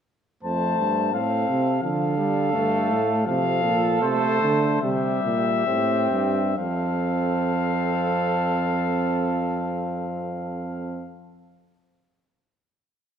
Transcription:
0, 0, Header, 1, 5, 480
1, 0, Start_track
1, 0, Key_signature, -1, "major"
1, 0, Tempo, 698487
1, 302, Time_signature, 4, 2, 24, 8
1, 1746, Tempo, 744417
1, 2706, Tempo, 790514
1, 3186, Tempo, 847458
1, 3666, Tempo, 910470
1, 4146, Tempo, 937500
1, 7528, End_track
2, 0, Start_track
2, 0, Title_t, "Trumpet"
2, 0, Program_c, 0, 56
2, 306, Note_on_c, 0, 81, 58
2, 753, Note_off_c, 0, 81, 0
2, 781, Note_on_c, 0, 77, 63
2, 1250, Note_off_c, 0, 77, 0
2, 1254, Note_on_c, 0, 77, 68
2, 2197, Note_off_c, 0, 77, 0
2, 2215, Note_on_c, 0, 77, 72
2, 2694, Note_off_c, 0, 77, 0
2, 2703, Note_on_c, 0, 72, 70
2, 3175, Note_off_c, 0, 72, 0
2, 3180, Note_on_c, 0, 76, 69
2, 4125, Note_off_c, 0, 76, 0
2, 4145, Note_on_c, 0, 77, 68
2, 6445, Note_off_c, 0, 77, 0
2, 7528, End_track
3, 0, Start_track
3, 0, Title_t, "Flugelhorn"
3, 0, Program_c, 1, 56
3, 301, Note_on_c, 1, 72, 68
3, 751, Note_off_c, 1, 72, 0
3, 774, Note_on_c, 1, 69, 63
3, 1247, Note_off_c, 1, 69, 0
3, 1260, Note_on_c, 1, 69, 80
3, 2200, Note_off_c, 1, 69, 0
3, 2220, Note_on_c, 1, 69, 86
3, 3168, Note_off_c, 1, 69, 0
3, 3187, Note_on_c, 1, 67, 67
3, 3657, Note_off_c, 1, 67, 0
3, 3667, Note_on_c, 1, 67, 69
3, 4058, Note_off_c, 1, 67, 0
3, 4147, Note_on_c, 1, 69, 74
3, 6446, Note_off_c, 1, 69, 0
3, 7528, End_track
4, 0, Start_track
4, 0, Title_t, "Trombone"
4, 0, Program_c, 2, 57
4, 297, Note_on_c, 2, 57, 60
4, 771, Note_on_c, 2, 60, 61
4, 782, Note_off_c, 2, 57, 0
4, 1246, Note_off_c, 2, 60, 0
4, 1250, Note_on_c, 2, 53, 57
4, 1491, Note_off_c, 2, 53, 0
4, 1495, Note_on_c, 2, 55, 67
4, 1736, Note_off_c, 2, 55, 0
4, 1740, Note_on_c, 2, 57, 70
4, 2214, Note_on_c, 2, 53, 67
4, 2224, Note_off_c, 2, 57, 0
4, 2697, Note_off_c, 2, 53, 0
4, 2701, Note_on_c, 2, 57, 75
4, 3174, Note_off_c, 2, 57, 0
4, 3187, Note_on_c, 2, 55, 61
4, 3657, Note_off_c, 2, 55, 0
4, 3668, Note_on_c, 2, 60, 63
4, 4137, Note_off_c, 2, 60, 0
4, 4145, Note_on_c, 2, 60, 58
4, 6445, Note_off_c, 2, 60, 0
4, 7528, End_track
5, 0, Start_track
5, 0, Title_t, "Euphonium"
5, 0, Program_c, 3, 58
5, 303, Note_on_c, 3, 41, 61
5, 523, Note_off_c, 3, 41, 0
5, 537, Note_on_c, 3, 43, 58
5, 780, Note_on_c, 3, 45, 62
5, 790, Note_off_c, 3, 43, 0
5, 1019, Note_off_c, 3, 45, 0
5, 1023, Note_on_c, 3, 48, 65
5, 1256, Note_off_c, 3, 48, 0
5, 1261, Note_on_c, 3, 50, 67
5, 1750, Note_on_c, 3, 43, 67
5, 1759, Note_off_c, 3, 50, 0
5, 1982, Note_on_c, 3, 45, 74
5, 1992, Note_off_c, 3, 43, 0
5, 2213, Note_off_c, 3, 45, 0
5, 2217, Note_on_c, 3, 48, 70
5, 2459, Note_on_c, 3, 46, 61
5, 2469, Note_off_c, 3, 48, 0
5, 2703, Note_on_c, 3, 48, 69
5, 2712, Note_off_c, 3, 46, 0
5, 2936, Note_off_c, 3, 48, 0
5, 2939, Note_on_c, 3, 50, 69
5, 3179, Note_off_c, 3, 50, 0
5, 3188, Note_on_c, 3, 48, 66
5, 3418, Note_off_c, 3, 48, 0
5, 3423, Note_on_c, 3, 46, 65
5, 3662, Note_off_c, 3, 46, 0
5, 3666, Note_on_c, 3, 45, 59
5, 3898, Note_off_c, 3, 45, 0
5, 3901, Note_on_c, 3, 43, 68
5, 4140, Note_off_c, 3, 43, 0
5, 4146, Note_on_c, 3, 41, 57
5, 6446, Note_off_c, 3, 41, 0
5, 7528, End_track
0, 0, End_of_file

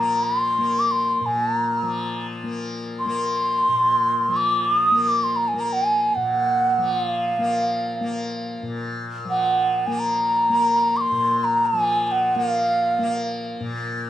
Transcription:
0, 0, Header, 1, 3, 480
1, 0, Start_track
1, 0, Tempo, 500000
1, 13535, End_track
2, 0, Start_track
2, 0, Title_t, "Bansuri"
2, 0, Program_c, 0, 73
2, 0, Note_on_c, 0, 82, 71
2, 231, Note_on_c, 0, 84, 85
2, 246, Note_off_c, 0, 82, 0
2, 762, Note_on_c, 0, 86, 87
2, 777, Note_off_c, 0, 84, 0
2, 879, Note_on_c, 0, 84, 80
2, 893, Note_off_c, 0, 86, 0
2, 1208, Note_on_c, 0, 80, 71
2, 1222, Note_off_c, 0, 84, 0
2, 1496, Note_off_c, 0, 80, 0
2, 1496, Note_on_c, 0, 82, 71
2, 2174, Note_off_c, 0, 82, 0
2, 2872, Note_on_c, 0, 84, 95
2, 4189, Note_on_c, 0, 86, 84
2, 4203, Note_off_c, 0, 84, 0
2, 4460, Note_off_c, 0, 86, 0
2, 4460, Note_on_c, 0, 86, 82
2, 4575, Note_off_c, 0, 86, 0
2, 4575, Note_on_c, 0, 87, 82
2, 4880, Note_on_c, 0, 86, 83
2, 4894, Note_off_c, 0, 87, 0
2, 5028, Note_on_c, 0, 84, 81
2, 5042, Note_off_c, 0, 86, 0
2, 5148, Note_on_c, 0, 82, 79
2, 5162, Note_off_c, 0, 84, 0
2, 5260, Note_on_c, 0, 80, 72
2, 5274, Note_off_c, 0, 82, 0
2, 5376, Note_on_c, 0, 82, 72
2, 5390, Note_off_c, 0, 80, 0
2, 5498, Note_on_c, 0, 80, 79
2, 5512, Note_off_c, 0, 82, 0
2, 5906, Note_on_c, 0, 78, 80
2, 5921, Note_off_c, 0, 80, 0
2, 6646, Note_off_c, 0, 78, 0
2, 6646, Note_on_c, 0, 78, 72
2, 6762, Note_off_c, 0, 78, 0
2, 6762, Note_on_c, 0, 77, 72
2, 8274, Note_off_c, 0, 77, 0
2, 8928, Note_on_c, 0, 78, 81
2, 9472, Note_on_c, 0, 80, 71
2, 9486, Note_off_c, 0, 78, 0
2, 9594, Note_on_c, 0, 82, 87
2, 9608, Note_off_c, 0, 80, 0
2, 10529, Note_on_c, 0, 86, 83
2, 10543, Note_off_c, 0, 82, 0
2, 10568, Note_on_c, 0, 84, 90
2, 10578, Note_off_c, 0, 86, 0
2, 10985, Note_on_c, 0, 82, 89
2, 10999, Note_off_c, 0, 84, 0
2, 11194, Note_on_c, 0, 80, 89
2, 11209, Note_off_c, 0, 82, 0
2, 11587, Note_off_c, 0, 80, 0
2, 11587, Note_on_c, 0, 80, 71
2, 11630, Note_on_c, 0, 78, 77
2, 11640, Note_off_c, 0, 80, 0
2, 11860, Note_off_c, 0, 78, 0
2, 11860, Note_on_c, 0, 78, 89
2, 11975, Note_off_c, 0, 78, 0
2, 11975, Note_on_c, 0, 77, 89
2, 13048, Note_off_c, 0, 77, 0
2, 13535, End_track
3, 0, Start_track
3, 0, Title_t, "Tanpura"
3, 0, Program_c, 1, 104
3, 0, Note_on_c, 1, 46, 60
3, 0, Note_on_c, 1, 53, 52
3, 0, Note_on_c, 1, 58, 56
3, 560, Note_off_c, 1, 58, 0
3, 560, Note_on_c, 1, 58, 51
3, 1155, Note_off_c, 1, 46, 0
3, 1159, Note_on_c, 1, 46, 52
3, 1745, Note_off_c, 1, 53, 0
3, 1749, Note_on_c, 1, 53, 53
3, 2337, Note_off_c, 1, 58, 0
3, 2337, Note_on_c, 1, 58, 56
3, 2932, Note_off_c, 1, 58, 0
3, 2932, Note_on_c, 1, 58, 60
3, 3531, Note_off_c, 1, 46, 0
3, 3535, Note_on_c, 1, 46, 51
3, 4106, Note_off_c, 1, 53, 0
3, 4110, Note_on_c, 1, 53, 55
3, 4718, Note_off_c, 1, 58, 0
3, 4718, Note_on_c, 1, 58, 55
3, 5317, Note_off_c, 1, 58, 0
3, 5317, Note_on_c, 1, 58, 52
3, 5911, Note_off_c, 1, 46, 0
3, 5915, Note_on_c, 1, 46, 55
3, 6503, Note_off_c, 1, 53, 0
3, 6507, Note_on_c, 1, 53, 53
3, 7091, Note_off_c, 1, 58, 0
3, 7091, Note_on_c, 1, 58, 60
3, 7687, Note_off_c, 1, 58, 0
3, 7687, Note_on_c, 1, 58, 53
3, 8276, Note_off_c, 1, 46, 0
3, 8280, Note_on_c, 1, 46, 54
3, 8874, Note_off_c, 1, 53, 0
3, 8878, Note_on_c, 1, 53, 54
3, 9477, Note_off_c, 1, 58, 0
3, 9477, Note_on_c, 1, 58, 59
3, 10075, Note_off_c, 1, 58, 0
3, 10075, Note_on_c, 1, 58, 57
3, 10664, Note_off_c, 1, 46, 0
3, 10668, Note_on_c, 1, 46, 60
3, 11255, Note_off_c, 1, 53, 0
3, 11259, Note_on_c, 1, 53, 54
3, 11863, Note_off_c, 1, 58, 0
3, 11863, Note_on_c, 1, 58, 62
3, 12467, Note_off_c, 1, 58, 0
3, 12467, Note_on_c, 1, 58, 63
3, 13055, Note_off_c, 1, 46, 0
3, 13059, Note_on_c, 1, 46, 63
3, 13535, Note_off_c, 1, 46, 0
3, 13535, Note_off_c, 1, 53, 0
3, 13535, Note_off_c, 1, 58, 0
3, 13535, End_track
0, 0, End_of_file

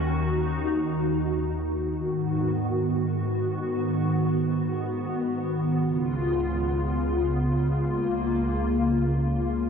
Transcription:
0, 0, Header, 1, 2, 480
1, 0, Start_track
1, 0, Tempo, 500000
1, 9308, End_track
2, 0, Start_track
2, 0, Title_t, "Analog synth pad"
2, 0, Program_c, 0, 89
2, 0, Note_on_c, 0, 39, 79
2, 0, Note_on_c, 0, 51, 76
2, 0, Note_on_c, 0, 66, 87
2, 56, Note_on_c, 0, 63, 74
2, 1878, Note_off_c, 0, 39, 0
2, 1878, Note_off_c, 0, 66, 0
2, 1879, Note_off_c, 0, 51, 0
2, 1896, Note_off_c, 0, 63, 0
2, 1913, Note_on_c, 0, 44, 74
2, 1913, Note_on_c, 0, 51, 71
2, 1913, Note_on_c, 0, 59, 70
2, 1913, Note_on_c, 0, 66, 85
2, 5593, Note_off_c, 0, 44, 0
2, 5593, Note_off_c, 0, 51, 0
2, 5593, Note_off_c, 0, 66, 0
2, 5631, Note_on_c, 0, 49, 71
2, 5632, Note_on_c, 0, 37, 72
2, 5632, Note_on_c, 0, 65, 83
2, 7450, Note_off_c, 0, 59, 0
2, 7489, Note_on_c, 0, 58, 72
2, 9308, Note_off_c, 0, 37, 0
2, 9308, Note_off_c, 0, 49, 0
2, 9308, Note_off_c, 0, 58, 0
2, 9308, Note_off_c, 0, 65, 0
2, 9308, End_track
0, 0, End_of_file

